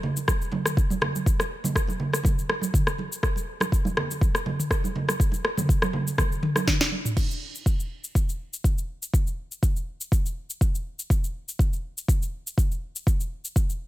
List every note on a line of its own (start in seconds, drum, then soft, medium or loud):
0.03 low conga loud
0.17 muted conga soft
0.17 cabasa medium
0.28 kick loud
0.28 cross-stick medium
0.28 high conga medium
0.28 cabasa medium
0.42 cabasa soft
0.52 muted conga soft
0.52 high conga medium
0.52 low conga medium
0.66 cross-stick medium
0.66 mid tom medium
0.66 cabasa medium
0.77 kick loud
0.77 muted conga soft
0.77 cabasa medium
0.90 high conga loud
0.90 cabasa soft
1.01 cross-stick medium
1.01 muted conga medium
1.01 low conga loud
1.16 high conga medium
1.16 cabasa medium
1.26 kick loud
1.26 cabasa medium
1.40 cross-stick medium
1.40 muted conga soft
1.40 cabasa soft
1.64 muted conga soft
1.64 high conga medium
1.64 low conga medium
1.64 cabasa medium
1.76 kick loud
1.76 cross-stick medium
1.76 cabasa medium
1.88 muted conga soft
1.88 high conga medium
1.88 cabasa soft
2.00 low conga medium
2.13 cross-stick medium
2.13 muted conga soft
2.13 cabasa medium
2.23 kick loud
2.23 high conga medium
2.23 low conga medium
2.23 cabasa medium
2.39 cabasa soft
2.49 cross-stick medium
2.49 muted conga soft
2.61 high conga medium
2.61 cabasa medium
2.74 kick loud
2.74 mid tom medium
2.74 muted conga soft
2.74 cabasa medium
2.87 cross-stick medium
2.87 cabasa soft
2.98 muted conga soft
2.98 high conga medium
3.12 cabasa medium
3.23 kick loud
3.23 cross-stick medium
3.23 cabasa medium
3.36 muted conga soft
3.36 cabasa soft
3.60 cross-stick medium
3.60 muted conga soft
3.60 high conga medium
3.60 cabasa medium
3.72 kick loud
3.72 cabasa medium
3.85 muted conga medium
3.85 high conga loud
3.85 cabasa soft
3.97 cross-stick medium
3.97 low conga loud
4.11 muted conga soft
4.11 cabasa medium
4.21 kick loud
4.21 high conga medium
4.21 cabasa medium
4.35 cross-stick medium
4.35 cabasa soft
4.46 muted conga medium
4.46 high conga medium
4.46 low conga medium
4.59 mid tom medium
4.59 cabasa medium
4.71 kick loud
4.71 cross-stick medium
4.71 muted conga soft
4.71 cabasa medium
4.84 high conga medium
4.84 cabasa soft
4.96 muted conga medium
4.96 low conga medium
5.08 cross-stick medium
5.08 high conga medium
5.08 cabasa medium
5.20 kick loud
5.20 cabasa medium
5.32 muted conga medium
5.32 cabasa soft
5.45 cross-stick medium
5.57 mid tom medium
5.57 muted conga soft
5.57 high conga medium
5.57 low conga medium
5.57 cabasa medium
5.69 kick loud
5.69 cabasa medium
5.82 cross-stick medium
5.82 muted conga soft
5.82 high conga loud
5.82 cabasa soft
5.93 low conga loud
6.07 muted conga soft
6.07 cabasa medium
6.18 kick loud
6.18 cross-stick medium
6.18 high conga medium
6.18 low conga medium
6.18 cabasa medium
6.32 cabasa soft
6.43 mid tom medium
6.43 muted conga soft
6.56 cross-stick medium
6.56 high conga medium
6.56 cabasa medium
6.67 kick loud
6.67 snare medium
6.67 mid tom medium
6.67 cabasa medium
6.81 snare medium
6.81 cabasa soft
6.92 muted conga medium
6.92 high conga medium
7.05 mid tom medium
7.05 cabasa medium
7.17 kick loud
7.17 crash medium
7.17 cabasa medium
7.31 cabasa soft
7.55 cabasa medium
7.66 kick loud
7.66 cabasa medium
7.80 cabasa soft
8.04 cabasa medium
8.15 kick loud
8.15 cabasa medium
8.29 cabasa soft
8.54 cabasa medium
8.64 kick loud
8.64 cabasa medium
8.78 cabasa soft
9.03 cabasa medium
9.14 kick loud
9.14 cabasa medium
9.27 cabasa soft
9.52 cabasa medium
9.63 kick loud
9.63 cabasa medium
9.76 cabasa soft
10.01 cabasa medium
10.12 kick loud
10.12 cabasa medium
10.26 cabasa soft
10.50 cabasa medium
10.61 kick loud
10.61 cabasa medium
10.75 cabasa soft
10.99 cabasa medium
11.10 kick loud
11.10 cabasa medium
11.24 cabasa soft
11.49 cabasa medium
11.59 kick loud
11.59 cabasa medium
11.73 cabasa soft
11.98 cabasa medium
12.08 kick loud
12.08 cabasa medium
12.22 cabasa soft
12.47 cabasa medium
12.58 kick loud
12.58 cabasa medium
12.72 cabasa soft
12.96 cabasa medium
13.07 kick loud
13.07 cabasa medium
13.20 cabasa soft
13.45 cabasa medium
13.56 kick loud
13.56 cabasa medium
13.70 cabasa soft